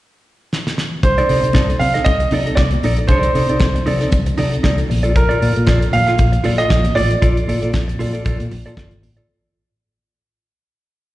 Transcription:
0.53 snare
0.67 snare
0.78 snare
1.03 C2 C5, muted clean electric guitar stroke, kick, closed hi-hat
1.18 D#4 A4 D5, closed hi-hat
1.29 C3 D#4 A4 D5, open hi-hat
1.43 C3, muted clean electric guitar stroke, closed hi-hat
1.53 C2 D#4 A4 D5, kick, snare, high conga
1.69 muted clean electric guitar stroke, closed hi-hat
1.79 C3 F5, muted clean electric guitar stroke, open hi-hat, muted conga, low conga
1.94 D#4 A4 D#5, snare, closed hi-hat
2.04 C2 D#5, muted clean electric guitar stroke, kick, closed hi-hat
2.20 muted clean electric guitar stroke, closed hi-hat
2.31 C3 D#4 A4 D5, open hi-hat, muted conga, low conga
2.46 D#4 A4 D#5, closed hi-hat
2.55 C2 D5, kick, snare, high conga
2.71 muted clean electric guitar stroke, closed hi-hat, high conga
2.83 A#1 D#4 A4 D5, open hi-hat, high conga
2.97 muted clean electric guitar stroke, closed hi-hat
3.07 C2 D#4 A4 C5 D5, kick, closed hi-hat
3.23 closed hi-hat
3.35 C3 D#4 A4 D5, open hi-hat
3.49 C3 D#4 A4 D5, closed hi-hat
3.60 C2, muted clean electric guitar stroke, kick, snare, high conga
3.75 muted clean electric guitar stroke, closed hi-hat
3.86 C3 D#4 A4 D5, open hi-hat, muted conga, low conga
4.01 D#4 A4 D5, snare, closed hi-hat
4.11 C2, muted clean electric guitar stroke, kick, closed hi-hat, muted conga, low conga
4.26 muted clean electric guitar stroke, closed hi-hat
4.38 C3 D#4 A4 D5, open hi-hat, muted conga, low conga
4.52 muted clean electric guitar stroke, closed hi-hat
4.63 C2 D#4 A4 D5, kick, snare, high conga
4.78 muted clean electric guitar stroke, closed hi-hat, high conga
4.89 A#1, muted clean electric guitar stroke, open hi-hat, high conga
5.03 F4 A4 D5, closed hi-hat
5.16 A#4, kick, closed hi-hat
5.29 F4 A4 D5, closed hi-hat
5.41 A#2 F4 A4 D5, open hi-hat
5.55 A#2, muted clean electric guitar stroke, closed hi-hat
5.67 A#1 F4 A4 D5, kick, snare, high conga
5.81 muted clean electric guitar stroke, closed hi-hat
5.92 A#2 F5, muted clean electric guitar stroke, open hi-hat, muted conga, low conga
6.07 F4 A4 F5, snare, closed hi-hat
6.18 A#1, muted clean electric guitar stroke, kick, closed hi-hat, muted conga
6.32 muted clean electric guitar stroke, closed hi-hat
6.44 A#2 F4 A4 D5, open hi-hat, muted conga, low conga
6.58 F4 A4 D#5 F5, closed hi-hat
6.70 A#1, kick, snare, high conga
6.85 muted clean electric guitar stroke, closed hi-hat, high conga
6.95 A1 F4 A4 D5, open hi-hat, high conga
7.11 muted clean electric guitar stroke, closed hi-hat
7.22 A#1 F4 A4 D5, kick, closed hi-hat
7.37 closed hi-hat
7.48 A#2 F4 A4 D5, open hi-hat
7.62 A#2 F4 A4 D5, closed hi-hat
7.73 A#1, muted clean electric guitar stroke, kick, snare, high conga
7.88 muted clean electric guitar stroke, closed hi-hat
7.99 A#2 F4 A4 D5, open hi-hat, muted conga, low conga
8.13 F4 A4 D5, closed hi-hat
8.25 A#1 F4 A4 D5, kick, closed hi-hat, muted conga, low conga
8.39 A#2, muted clean electric guitar stroke, closed hi-hat
8.51 A#1, muted clean electric guitar stroke, open hi-hat, muted conga, low conga
8.66 A#2 F4 A4 D5, closed hi-hat
8.77 G1 F4 A4 D5, kick, snare, high conga
8.91 muted clean electric guitar stroke, closed hi-hat, high conga
9.02 A1, muted clean electric guitar stroke, open hi-hat, high conga
9.17 F4 A4 D5, closed hi-hat

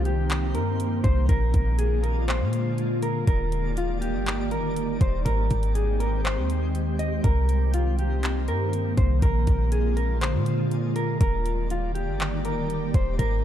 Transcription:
Already playing: C2 D#3 A#3 C4 D#4 G4 C5
0.05 G4, closed hi-hat
0.30 clap, closed hi-hat
0.55 G2 A#4, closed hi-hat
0.80 closed hi-hat
1.04 C2 C5, kick, closed hi-hat
1.29 A#1 D3 G#3 F4 G#4 A#4 D5, kick, closed hi-hat
1.54 A#1, kick, closed hi-hat
1.79 G#4, closed hi-hat
2.03 A#4, closed hi-hat
2.28 C5, clap, closed hi-hat
2.41 A#2
2.53 closed hi-hat
2.78 closed hi-hat
3.03 A#4, closed hi-hat
3.27 D#1 D#3 G3 A#3 D#4 G4 A#4 D5, kick, closed hi-hat
3.52 closed hi-hat
3.77 F4, closed hi-hat
4.01 G4, closed hi-hat
4.14 G1
4.26 clap, closed hi-hat
4.51 A#4, closed hi-hat
4.58 D#1
4.76 closed hi-hat
5.01 D#1 C5, kick, closed hi-hat
5.25 G#1 G#3 C4 G4 A#4 C5, kick, closed hi-hat
5.50 G#1, kick, closed hi-hat
5.63 closed hi-hat
5.75 G#4, closed hi-hat
6.00 A#4, closed hi-hat
6.24 C5, clap, closed hi-hat
6.37 D#2
6.50 closed hi-hat
6.75 closed hi-hat
6.99 D#5, closed hi-hat
7.24 C2 D#3 A#3 C4 D#4 A#4, kick, closed hi-hat
7.49 closed hi-hat
7.74 F4, closed hi-hat
7.99 G4, closed hi-hat
8.23 clap, closed hi-hat
8.48 G2 A#4, closed hi-hat
8.73 closed hi-hat
8.97 C2 C5, kick, closed hi-hat
9.22 A#1 D3 G#3 F4 G#4 A#4 D5, kick, closed hi-hat
9.47 A#1, kick, closed hi-hat
9.72 G#4, closed hi-hat
9.97 A#4, closed hi-hat
10.21 C5, clap, closed hi-hat
10.34 A#2
10.46 closed hi-hat
10.71 closed hi-hat
10.96 A#4, closed hi-hat
11.21 D#1 D#3 G3 A#3 D#4 G4 A#4 D5, kick, closed hi-hat
11.46 closed hi-hat
11.70 F4, closed hi-hat
11.95 G4, closed hi-hat
12.07 G1
12.20 clap, closed hi-hat
12.45 A#4, closed hi-hat
12.51 D#1
12.70 closed hi-hat
12.94 D#1 C5, kick, closed hi-hat
13.19 G#1 G#3 C4 G4 A#4 C5, kick, closed hi-hat

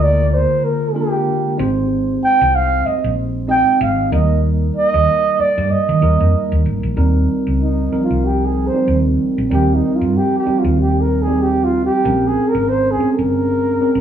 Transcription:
Already playing: D2 D3 G#3 A#3 F4 A#4
0.03 D5
0.28 D5
0.34 C5
0.64 A#4
0.94 G#3 A#3 D4 F4 G4 A#4
1.58 G#1 G#3 C4 D#4 G4 C5
2.24 G5
2.41 C2
2.55 F5
2.86 D#5, muted fingered electric bass stroke
3.04 A#1
3.47 G#3 C4 D#4 G4 D#5 G5
3.81 G#1 F5
4.11 D#2 G3 A#3 D#4 A#4 D#5
4.76 D#5
4.94 D#2
5.39 D5, muted fingered electric bass stroke
5.58 G2
5.71 D#5
5.89 D#3
6.01 D#2 G3 A#3 D#4 A#4
6.20 F2
6.52 D#2
6.66 G#1
6.83 A#1
6.96 D#2 G3 C4 D#4 A#4
7.47 C#2
7.62 D#4
7.91 F3 C4 D#4 A#4, muted fingered electric bass stroke
7.98 G3
8.04 F4
8.11 C2
8.25 G4
8.45 G#4
8.67 C5
8.73 G3 C4 D#4 G4
8.88 D#2
9.38 A#1
9.50 D#2 G3 C4 D#4 G4 A#4
9.74 D#4
9.96 F4
10.01 G2
10.17 G4
10.38 G4
10.45 G3 C4 D#4 G4, muted fingered electric bass stroke
10.59 F4
10.64 D#2
10.80 G4
11.01 A#4
11.22 G#4
11.27 G3 C4 D#4 G4
11.42 G4
11.64 F4
11.85 G4
12.03 A#1 G#3 C4 C#4 A#4
12.27 G#4
12.48 A#4
12.55 G#1
12.69 C5
12.91 G#4
12.99 G#3 C4 C#4 G#4, muted fingered electric bass stroke
13.12 A#4
13.19 G1
13.81 G#3 C4 C#4 A#4
13.95 G#1

